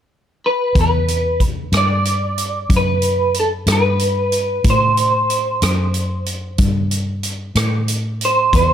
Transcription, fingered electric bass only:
0, 0, Header, 1, 2, 480
1, 0, Start_track
1, 0, Key_signature, 1, "minor"
1, 0, Tempo, 648228
1, 563, Time_signature, 12, 3, 24, 8
1, 6468, End_track
2, 0, Start_track
2, 0, Title_t, "Fingered electric bass"
2, 0, Program_c, 0, 33
2, 555, Note_on_c, 0, 40, 56
2, 1257, Note_off_c, 0, 40, 0
2, 1273, Note_on_c, 0, 43, 62
2, 1976, Note_off_c, 0, 43, 0
2, 1995, Note_on_c, 0, 42, 57
2, 2697, Note_off_c, 0, 42, 0
2, 2714, Note_on_c, 0, 43, 61
2, 3417, Note_off_c, 0, 43, 0
2, 3437, Note_on_c, 0, 45, 58
2, 4138, Note_off_c, 0, 45, 0
2, 4163, Note_on_c, 0, 42, 63
2, 4861, Note_off_c, 0, 42, 0
2, 4876, Note_on_c, 0, 43, 58
2, 5578, Note_off_c, 0, 43, 0
2, 5593, Note_on_c, 0, 45, 66
2, 6296, Note_off_c, 0, 45, 0
2, 6316, Note_on_c, 0, 40, 55
2, 6468, Note_off_c, 0, 40, 0
2, 6468, End_track
0, 0, End_of_file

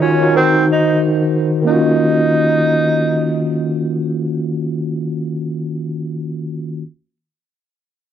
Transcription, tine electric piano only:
0, 0, Header, 1, 2, 480
1, 0, Start_track
1, 0, Key_signature, -6, "minor"
1, 0, Tempo, 659341
1, 1216, Time_signature, 4, 2, 24, 8
1, 5918, End_track
2, 0, Start_track
2, 0, Title_t, "Tine electric piano"
2, 0, Program_c, 0, 4
2, 0, Control_c, 0, 64, 127
2, 0, Note_on_c, 0, 51, 75
2, 0, Note_on_c, 0, 63, 73
2, 0, Note_on_c, 0, 65, 67
2, 0, Note_on_c, 0, 66, 68
2, 0, Note_on_c, 0, 73, 86
2, 6, Note_off_c, 0, 51, 0
2, 6, Note_on_c, 0, 51, 80
2, 11, Note_off_c, 0, 63, 0
2, 11, Note_on_c, 0, 63, 69
2, 16, Note_off_c, 0, 65, 0
2, 16, Note_on_c, 0, 65, 76
2, 20, Note_off_c, 0, 66, 0
2, 20, Note_on_c, 0, 66, 68
2, 26, Note_off_c, 0, 73, 0
2, 26, Note_on_c, 0, 73, 89
2, 129, Note_off_c, 0, 51, 0
2, 132, Note_off_c, 0, 63, 0
2, 134, Note_off_c, 0, 65, 0
2, 136, Note_off_c, 0, 66, 0
2, 139, Note_off_c, 0, 73, 0
2, 147, Note_on_c, 0, 51, 77
2, 152, Note_on_c, 0, 63, 76
2, 157, Note_on_c, 0, 65, 72
2, 162, Note_on_c, 0, 66, 72
2, 167, Note_on_c, 0, 73, 90
2, 240, Note_off_c, 0, 51, 0
2, 245, Note_off_c, 0, 63, 0
2, 249, Note_off_c, 0, 66, 0
2, 249, Note_on_c, 0, 51, 84
2, 253, Note_on_c, 0, 63, 80
2, 258, Note_on_c, 0, 66, 75
2, 259, Note_off_c, 0, 65, 0
2, 263, Note_on_c, 0, 70, 74
2, 264, Note_off_c, 0, 73, 0
2, 266, Control_c, 0, 64, 0
2, 268, Note_on_c, 0, 72, 92
2, 405, Control_c, 0, 64, 127
2, 1105, Note_off_c, 0, 51, 0
2, 1107, Note_off_c, 0, 63, 0
2, 1109, Note_off_c, 0, 66, 0
2, 1112, Note_off_c, 0, 70, 0
2, 1114, Note_off_c, 0, 72, 0
2, 1176, Note_on_c, 0, 51, 84
2, 1196, Note_on_c, 0, 58, 79
2, 1215, Note_on_c, 0, 61, 79
2, 1225, Control_c, 0, 64, 0
2, 1235, Note_on_c, 0, 65, 80
2, 1255, Note_on_c, 0, 66, 92
2, 1356, Control_c, 0, 64, 127
2, 4179, Note_off_c, 0, 51, 0
2, 4189, Note_off_c, 0, 58, 0
2, 4199, Note_off_c, 0, 61, 0
2, 4209, Note_off_c, 0, 65, 0
2, 4218, Note_off_c, 0, 66, 0
2, 4964, Control_c, 0, 64, 0
2, 5918, End_track
0, 0, End_of_file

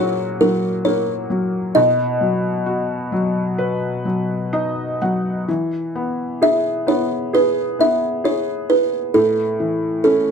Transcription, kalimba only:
0, 0, Header, 1, 2, 480
1, 0, Start_track
1, 0, Key_signature, 4, "major"
1, 0, Tempo, 899550
1, 934, Time_signature, 4, 2, 24, 8
1, 1418, Tempo, 934579
1, 3818, Tempo, 903614
1, 5402, End_track
2, 0, Start_track
2, 0, Title_t, "Kalimba"
2, 0, Program_c, 0, 108
2, 0, Note_on_c, 0, 73, 90
2, 218, Note_on_c, 0, 70, 87
2, 220, Note_off_c, 0, 73, 0
2, 453, Note_on_c, 0, 73, 88
2, 462, Note_off_c, 0, 70, 0
2, 912, Note_off_c, 0, 73, 0
2, 933, Note_on_c, 0, 75, 84
2, 2358, Note_off_c, 0, 75, 0
2, 3353, Note_on_c, 0, 76, 93
2, 3569, Note_off_c, 0, 76, 0
2, 3588, Note_on_c, 0, 73, 83
2, 3826, Note_on_c, 0, 71, 84
2, 3829, Note_off_c, 0, 73, 0
2, 4071, Note_on_c, 0, 76, 82
2, 4075, Note_off_c, 0, 71, 0
2, 4308, Note_on_c, 0, 73, 80
2, 4315, Note_off_c, 0, 76, 0
2, 4544, Note_on_c, 0, 71, 80
2, 4552, Note_off_c, 0, 73, 0
2, 4766, Note_off_c, 0, 71, 0
2, 4781, Note_on_c, 0, 69, 77
2, 5251, Note_off_c, 0, 69, 0
2, 5257, Note_on_c, 0, 69, 75
2, 5402, Note_off_c, 0, 69, 0
2, 5402, End_track
0, 0, End_of_file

